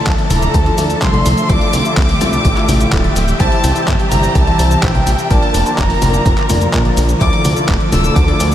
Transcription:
Already playing: D3 F3 A3 A4 E5
0.07 D1, kick, clap, closed hi-hat, cabasa
0.18 closed hi-hat
0.30 D1 E4 F4 A4 D5 A#5, open hi-hat, high conga, cabasa
0.42 closed hi-hat, cabasa
0.54 D2 A5, kick, closed hi-hat, cabasa
0.66 E4 F4 A4 D5, closed hi-hat
0.78 D2, open hi-hat, cabasa
0.90 closed hi-hat, cabasa
1.02 C2 E4 F4 A4 D5 C6, kick, clap, closed hi-hat, cabasa
1.14 closed hi-hat, high conga
1.26 C2, open hi-hat, cabasa
1.38 closed hi-hat, cabasa
1.49 C2 E4 F4 G4 A4 D5 D6, kick, closed hi-hat, cabasa
1.61 closed hi-hat
1.73 C2, open hi-hat, cabasa
1.85 E4 F4 A4 D5, closed hi-hat, cabasa
1.97 C2 D6, kick, clap, closed hi-hat, cabasa
2.09 open hi-hat
2.21 C2 E4 F4 A4 D5, open hi-hat, high conga, cabasa
2.33 closed hi-hat, cabasa
2.45 A1, kick, closed hi-hat, cabasa
2.57 E4 F4 A4 D5, clap, closed hi-hat
2.68 A1, open hi-hat, high conga, cabasa
2.81 closed hi-hat, cabasa
2.92 D1 E4 F4 A4 D5, kick, clap, closed hi-hat, cabasa
3.04 closed hi-hat
3.16 D1, open hi-hat, cabasa
3.28 closed hi-hat, cabasa
3.40 C2 C3 E3 G3 E4 G4 C5 E5 A5, kick, closed hi-hat, cabasa
3.52 closed hi-hat
3.64 C2, open hi-hat, high conga, cabasa
3.76 E4 G4 C5 E5, closed hi-hat, cabasa
3.88 G1, kick, clap, closed hi-hat, cabasa
4.00 closed hi-hat
4.11 G1 E4 G4 C5 E5 A#5, open hi-hat, high conga, cabasa
4.23 closed hi-hat, cabasa
4.35 C2 A5, kick, closed hi-hat, cabasa
4.47 E4 G4 C5 E5, closed hi-hat
4.59 C2, open hi-hat, cabasa
4.71 closed hi-hat, cabasa
4.83 A#1 E4 G4 C5 E5 G5, kick, clap, closed hi-hat, cabasa
4.95 closed hi-hat, high conga
5.07 A#1, open hi-hat, cabasa
5.19 closed hi-hat, cabasa
5.30 A#1 D3 F3 A#3 D4 F4 A#4 D5 A5, kick, closed hi-hat, cabasa
5.43 closed hi-hat
5.54 F1, open hi-hat, cabasa
5.66 D4 F4 A#4 D5, closed hi-hat, cabasa
5.78 F1 A#5, kick, clap, closed hi-hat, cabasa
5.90 open hi-hat
6.02 F1 D4 F4 A#4 D5, open hi-hat, high conga, cabasa
6.14 closed hi-hat, cabasa
6.26 F1, kick, closed hi-hat, cabasa
6.38 D4 F4 A#4 D5, clap, closed hi-hat
6.50 F1, open hi-hat, high conga, cabasa
6.61 closed hi-hat, cabasa
6.73 A#1 D4 F4 A#4 D5, kick, clap, closed hi-hat, cabasa
6.85 closed hi-hat
6.97 A#1, open hi-hat, cabasa
7.09 closed hi-hat, cabasa
7.21 D2 A3 D4 E4 F4 A4 D5 D6, kick, closed hi-hat, cabasa
7.33 closed hi-hat
7.45 D2, open hi-hat, high conga, cabasa
7.57 E4 F4 A4 D5, closed hi-hat, cabasa
7.68 D1, kick, clap, closed hi-hat, cabasa
7.80 closed hi-hat
7.92 D1 E4 F4 A4 D5 E6, open hi-hat, high conga, cabasa
8.04 closed hi-hat, cabasa
8.16 D2 D6, kick, closed hi-hat, cabasa
8.28 E4 F4 A4 D5, closed hi-hat
8.40 D2, open hi-hat, cabasa

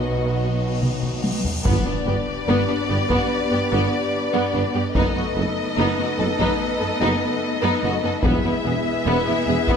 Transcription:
Already playing: B1 B2 F#3 B3 D#4 F#4 D#5, cymbal swell
0.82 taiko mid
1.03 taiko mid
1.24 taiko high
1.44 taiko low
1.64 G1 G2 B3 D4 G4 B4 D5, taiko, impact
1.85 G2 B3 D4
2.06 G1 G2 B3 G4
2.47 G1 G2 B3
2.68 G2 B3 D4
2.88 G1 G2 B3 G4
3.08 G2 B3, taiko
3.50 G2 B3 G4
3.71 G1 G2 B3
4.32 G2 B3
4.53 G1 G2 B3 D4
4.74 G2 B3 G4
4.94 F#1 F#2 A3 B3 D#4 A4 B4 D#5, taiko
5.15 F#2 B3 F#4
5.36 F#1 F#2 B3 A4
5.77 F#1 F#2 B3 D#4
5.97 F#2 B3 F#4
6.18 F#1 F#2 B3 A4
6.38 F#2 B3 D#4, taiko
6.80 F#2 B3 A4
7.00 F#1 F#2 B3 D#4
7.62 F#2 B3 D#4
7.82 F#1 F#2 B3 F#4
8.03 F#2 B3 A4
8.22 E1 E2 G#3 B3 E4 G#4 B4 E5, taiko
8.44 E2 B3 E4
8.64 E1 E2 B3 G#4
9.06 E1 E2 B3
9.27 E2 B3 E4
9.48 E1 E2 B3 G#4
9.68 E2 B3, taiko

